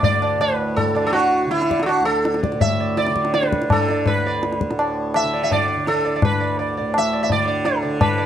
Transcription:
0.00 2.00 D2 medium
0.00 0.38 A2 medium
0.00 0.94 D3 medium
0.00 0.21 D5 medium
0.00 tabla tin medium
0.00 tabla ge medium
0.22 0.39 D5 soft
0.22 tabla na medium
0.38 2.53 A2 medium
0.38 0.78 B4 medium
0.38 tabla na medium
0.76 1.05 A4 medium
0.76 tabla tin medium
0.76 tabla ge medium
0.94 1.46 D3 medium
0.94 1.12 D5 soft
0.94 tabla na medium
1.07 1.12 A4 medium
1.13 1.50 F#4 medium
1.13 tabla tin medium
1.46 3.09 D3 medium
1.51 1.82 E4 medium
1.51 tabla te medium
1.62 tabla te medium
1.70 1.87 D5 soft
1.70 tabla ke medium
1.80 1.86 A4 medium
1.80 tabla te medium
1.86 2.05 F#4 medium
1.86 tabla na medium
2.00 4.16 D2 medium
2.05 2.40 A4 medium
2.25 tabla te medium
2.34 tabla te medium
2.43 2.60 D5 soft
2.43 tabla ke medium
2.52 4.70 A2 medium
2.52 tabla te medium
2.61 2.99 E5 medium
2.61 tabla tin medium
2.61 tabla ge medium
2.80 2.97 D5 soft
2.97 3.33 D5 medium
2.97 tabla te medium
3.07 3.62 D3 medium
3.07 tabla te medium
3.16 tabla ke medium
3.25 tabla te medium
3.34 3.71 B4 medium
3.34 tabla te medium
3.43 tabla te medium
3.52 tabla ke medium
3.62 5.24 D3 medium
3.62 tabla te medium
3.70 4.08 A4 medium
3.70 tabla na medium
3.70 tabla ge medium
3.89 4.06 D5 soft
3.89 tabla te medium
4.06 4.57 B4 medium
4.06 tabla tin loud
4.06 tabla ge medium
4.17 6.28 D2 medium
4.26 4.42 D5 soft
4.43 tabla te medium
4.52 tabla te medium
4.61 tabla ke medium
4.70 6.80 A2 medium
4.70 tabla te medium
4.79 4.95 D5 soft
4.79 tabla na medium
5.14 5.42 E5 medium
5.14 tabla na medium
5.24 5.76 D3 medium
5.33 5.50 D5 soft
5.43 5.50 E5 medium
5.51 5.67 D5 medium
5.51 tabla tin medium
5.51 tabla ge medium
5.68 5.85 D5 soft
5.76 7.33 D3 medium
5.87 6.18 A4 medium
5.87 tabla te medium
6.05 6.15 D5 soft
6.16 6.22 D5 medium
6.22 6.57 B4 medium
6.22 tabla na medium
6.22 tabla ge medium
6.28 8.26 D2 medium
6.40 6.56 D5 soft
6.59 6.75 D5 soft
6.77 8.26 A2 medium
6.77 6.93 D5 soft
6.94 7.22 E5 medium
6.94 tabla na medium
7.13 7.28 D5 soft
7.23 7.29 E5 medium
7.30 7.85 D3 medium
7.30 7.46 D5 medium
7.30 tabla tin medium
7.30 tabla ge medium
7.47 7.63 D5 soft
7.65 8.01 A4 medium
7.65 tabla te medium
7.82 8.26 D3 medium
7.82 7.98 D5 soft
8.01 8.26 B4 medium
8.01 tabla na medium
8.01 tabla ge medium
8.18 8.26 D5 soft

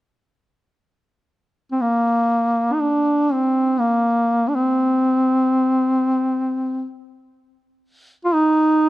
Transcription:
1.72 1.82 C4 soft
1.81 2.75 A#3 medium
2.74 2.83 D#4 soft
2.81 3.34 D4 medium
3.33 3.82 C4 medium
3.80 4.50 A#3 medium
4.48 4.56 D4 soft
4.55 6.86 C4 medium
8.25 8.36 F4 medium
8.34 8.89 D#4 loud

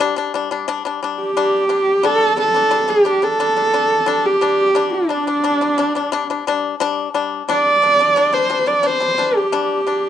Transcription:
0.00 0.14 G3 loud
0.00 0.14 D4 loud
0.00 1.02 G4 medium
0.00 0.53 A4 medium
0.16 0.31 G3 medium
0.16 0.32 D4 medium
0.34 0.48 G3 medium
0.34 0.49 D4 medium
0.51 0.65 G3 medium
0.51 0.66 D4 medium
0.68 0.82 G3 loud
0.68 0.82 D4 loud
0.85 0.99 G3 medium
0.85 1.00 D4 medium
1.03 1.30 G3 medium
1.03 1.30 D4 medium
1.20 2.06 G4 medium
1.37 1.64 G3 medium
1.37 1.64 D4 loud
1.69 1.97 G3 medium
1.69 1.97 D4 medium
2.03 2.31 G3 medium
2.03 2.32 D4 loud
2.03 2.38 A4 loud
2.37 2.51 G3 medium
2.37 2.52 D4 medium
2.37 2.91 A4 loud
2.54 2.69 G3 medium
2.54 2.69 D4 medium
2.71 2.85 G3 medium
2.71 2.86 D4 medium
2.88 3.02 G3 medium
2.88 3.03 D4 medium
2.88 3.25 G4 medium
3.05 3.19 G3 medium
3.05 3.20 D4 medium
3.22 3.36 G3 medium
3.22 3.37 D4 medium
3.22 4.27 A4 loud
3.40 3.54 G3 medium
3.40 3.54 D4 medium
3.56 3.71 G3 medium
3.56 3.71 D4 medium
3.74 4.01 G3 medium
3.74 4.01 D4 medium
4.06 4.35 G3 medium
4.06 4.35 D4 loud
4.25 4.95 G4 medium
4.41 4.69 G3 medium
4.41 4.69 D4 medium
4.75 5.03 G3 medium
4.75 5.03 D4 loud
4.93 6.54 D4 medium
5.09 5.23 G3 medium
5.09 5.24 D4 medium
5.27 5.41 G3 medium
5.27 5.41 D4 medium
5.44 5.58 G3 medium
5.44 5.58 D4 medium
5.61 5.75 G3 medium
5.61 5.75 D4 medium
5.78 5.92 G3 medium
5.78 5.92 D4 medium
5.95 6.09 G3 medium
5.95 6.10 D4 medium
6.12 6.26 G3 loud
6.12 6.26 D4 loud
6.30 6.43 G3 medium
6.30 6.44 D4 medium
6.47 6.74 G3 medium
6.47 6.75 D4 loud
6.80 7.08 G3 loud
6.80 7.08 D4 loud
7.14 7.42 G3 medium
7.14 7.42 D4 medium
7.49 7.76 G3 medium
7.49 7.76 D4 loud
7.49 8.35 D5 loud
7.82 7.96 G3 medium
7.82 7.97 D4 medium
7.99 8.13 G3 medium
7.99 8.14 D4 medium
8.16 8.30 G3 medium
8.16 8.30 D4 medium
8.33 8.47 G3 medium
8.33 8.47 D4 medium
8.33 8.69 C5 medium
8.50 8.64 G3 medium
8.50 8.64 D4 medium
8.66 8.81 G3 medium
8.66 8.81 D4 medium
8.66 8.87 D5 medium
8.83 8.97 G3 medium
8.83 8.98 D4 medium
8.83 9.38 C5 loud
9.00 9.15 G3 medium
9.00 9.15 D4 medium
9.18 9.46 G3 medium
9.18 9.46 D4 medium
9.37 10.09 G4 medium
9.52 9.80 G3 medium
9.52 9.80 D4 loud
9.87 10.09 G3 medium
9.87 10.09 D4 medium

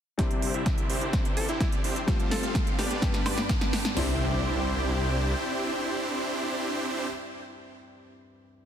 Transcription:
0.18 0.38 C2 loud
0.18 2.02 C3 medium
0.18 2.03 G3 medium
0.18 2.03 C4 medium
0.18 0.51 C4 medium
0.18 0.51 D4 medium
0.18 2.03 D4 medium
0.18 0.51 E4 medium
0.18 2.04 E4 medium
0.18 0.51 G4 medium
0.18 2.06 C5 medium
0.18 0.51 C5 loud
0.18 2.06 E5 medium
0.18 3.93 G5 medium
0.18 2.06 D6 medium
0.18 kick loud
0.18 snare soft
0.18 closed hi-hat medium
0.18 riser medium
0.31 closed hi-hat soft
0.42 0.62 C2 medium
0.42 open hi-hat loud
0.54 0.87 C4 medium
0.54 0.87 D4 medium
0.54 0.87 E4 medium
0.54 0.87 G4 medium
0.54 0.87 E5 loud
0.54 closed hi-hat soft
0.66 0.86 C2 medium
0.66 kick loud
0.66 snare soft
0.66 closed hi-hat medium
0.78 closed hi-hat soft
0.90 1.09 C2 medium
0.90 1.46 C4 medium
0.90 1.46 D4 medium
0.90 1.46 E4 medium
0.90 1.46 G4 medium
0.90 1.46 C5 medium
0.90 open hi-hat medium
1.01 closed hi-hat soft
1.13 1.33 G1 medium
1.13 kick loud
1.13 snare medium
1.13 closed hi-hat medium
1.25 closed hi-hat soft
1.37 1.47 G1 medium
1.37 1.46 A4 medium
1.37 open hi-hat loud
1.49 1.58 C4 medium
1.49 1.58 D4 medium
1.49 1.56 E4 medium
1.49 1.58 E4 medium
1.49 1.58 G4 medium
1.49 1.58 C5 loud
1.49 closed hi-hat soft
1.60 1.70 C2 loud
1.60 1.81 C4 medium
1.60 1.81 D4 medium
1.60 1.68 E4 medium
1.60 1.81 E4 medium
1.60 1.81 G4 medium
1.60 1.81 D5 medium
1.60 kick loud
1.60 snare medium
1.60 closed hi-hat medium
1.72 closed hi-hat soft
1.84 1.94 C2 medium
1.84 1.99 C4 medium
1.84 1.99 D4 medium
1.84 1.99 E4 medium
1.84 1.99 G4 medium
1.84 1.99 C5 medium
1.84 open hi-hat medium
1.96 closed hi-hat soft
2.06 2.27 F1 loud
2.06 2.97 G3 medium
2.06 2.97 A3 medium
2.06 2.40 C4 medium
2.06 2.98 C4 medium
2.06 2.40 F4 medium
2.06 2.98 F4 medium
2.06 2.40 G4 medium
2.06 3.01 A4 medium
2.06 2.40 A4 medium
2.06 2.40 C5 loud
2.06 3.01 F5 medium
2.06 3.01 C6 medium
2.06 kick loud
2.06 snare medium
2.06 closed hi-hat medium
2.20 closed hi-hat soft
2.31 2.51 F1 medium
2.31 2.44 A4 medium
2.31 snare medium
2.31 open hi-hat loud
2.43 2.76 C4 medium
2.43 2.76 F4 medium
2.43 2.76 G4 medium
2.43 2.76 A4 medium
2.43 2.76 F5 loud
2.43 closed hi-hat soft
2.55 2.75 F1 medium
2.55 kick loud
2.55 snare medium
2.55 closed hi-hat medium
2.67 closed hi-hat soft
2.78 2.98 F1 loud
2.78 3.23 B3 loud
2.78 3.23 D4 medium
2.78 2.86 G4 medium
2.78 3.23 G4 medium
2.78 3.23 B4 medium
2.78 3.23 D5 loud
2.78 snare medium
2.78 open hi-hat medium
2.90 2.98 G4 medium
2.90 closed hi-hat soft
3.01 3.91 G2 medium
3.01 3.22 G2 loud
3.01 3.92 G3 medium
3.01 3.92 B3 medium
3.01 3.92 D4 medium
3.01 3.93 G4 medium
3.01 3.96 B4 medium
3.01 3.95 D5 medium
3.01 3.96 D6 medium
3.01 kick loud
3.01 snare medium
3.01 closed hi-hat medium
3.14 snare medium
3.14 closed hi-hat soft
3.26 3.36 D2 medium
3.26 3.41 B3 loud
3.26 3.41 D4 medium
3.26 3.41 G4 medium
3.26 3.41 B4 medium
3.26 3.41 D5 loud
3.26 snare medium
3.26 open hi-hat loud
3.26 high woodblock medium
3.38 snare medium
3.38 closed hi-hat soft
3.49 3.59 G1 loud
3.49 kick loud
3.49 snare loud
3.49 closed hi-hat medium
3.61 snare medium
3.61 closed hi-hat soft
3.73 3.83 G1 medium
3.73 snare loud
3.73 open hi-hat loud
3.85 snare loud
3.85 closed hi-hat soft
3.95 5.34 C2 loud
3.95 7.05 G3 medium
3.95 7.07 C4 medium
3.95 7.07 D4 medium
3.95 7.08 D4 medium
3.95 7.07 E4 medium
3.95 7.09 E4 loud
3.95 7.07 G4 medium
3.95 7.07 C5 loud
3.95 7.07 C5 medium
3.95 7.07 D5 medium
3.95 7.07 G5 medium
3.95 snare loud
3.95 open hi-hat medium
3.95 impact medium

